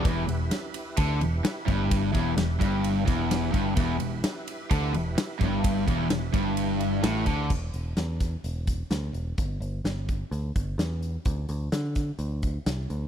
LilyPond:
<<
  \new Staff \with { instrumentName = "Tonewheel organ" } { \time 4/4 \key e \minor \tempo 4 = 129 << { <c'' d''>8 r2. r8 | r1 | r1 | r1 |
r1 | r1 | r1 | } \\ { <e' g' b' e''>1~ | <e' g' b' e''>1 | <e' g' b' e''>1~ | <e' g' b' e''>1 |
r1 | r1 | r1 | } >> }
  \new Staff \with { instrumentName = "Overdriven electric guitar" } { \clef bass \time 4/4 \key e \minor e,8 e,8 r4 d8 e,8 r8 g,8~ | g,8 e,8 e,8 g,4 e,4 g,8 | e,8 e,8 r4 d8 e,8 r8 g,8~ | g,8 e,8 e,8 g,4. a,8 d8 |
r1 | r1 | r1 | }
  \new Staff \with { instrumentName = "Overdriven electric guitar" } { \clef bass \time 4/4 \key e \minor e,8 e,8 r4 d8 e,8 r8 g,8~ | g,8 e,8 e,8 g,4 e,4 g,8 | e,8 e,8 r4 d8 e,8 r8 g,8~ | g,8 e,8 e,8 g,4. a,8 d8 |
r1 | r1 | r1 | }
  \new Staff \with { instrumentName = "Picked electric bass" } { \clef bass \time 4/4 \key e \minor e,,8 e,,8 r4 d,8 e,,8 r8 g,,8~ | g,,8 e,,8 e,,8 g,,4 e,,4 g,,8 | e,,8 e,,8 r4 d,8 e,,8 r8 g,,8~ | g,,8 e,,8 e,,8 g,,4. a,,8 d,8 |
e,,8 e,,8 e,4 e,,4 d,8 e,,8 | g,,8 g,,8 g,,4 d,8 g,,8 e,4 | d,8 d,8 d4 d,4 c,8 d,8 | }
  \new DrumStaff \with { instrumentName = "Drums" } \drummode { \time 4/4 <bd cymr>8 cymr8 <cymr sn>8 cymr8 <bd cymr>8 cymr8 <cymr sn>16 sn16 <bd cymr>8 | <bd cymr>8 <bd cymr>8 <cymr sn>8 <bd cymr>8 cymr8 <bd cymr>8 <cymr sn>16 sn16 <bd cymr>8 | <bd cymr>8 cymr8 <cymr sn>8 cymr8 <bd cymr>8 cymr8 <cymr sn>8 <bd cymr>8 | <bd cymr>8 <bd cymr>8 <cymr sn>8 <bd cymr>8 cymr8 cymr8 <cymr sn>8 <bd cymr>8 |
<cymc bd>8 hh8 <hh sn>8 <hh bd sn>8 hh8 <hh bd>8 <hh sn>8 hh8 | <hh bd>8 hh8 <hh sn>8 <hh bd>8 hh8 <hh bd>8 <hh sn>8 hh8 | <hh bd>8 hh8 <hh sn>8 <hh bd sn>8 hh8 <hh bd>8 <hh sn>8 hh8 | }
>>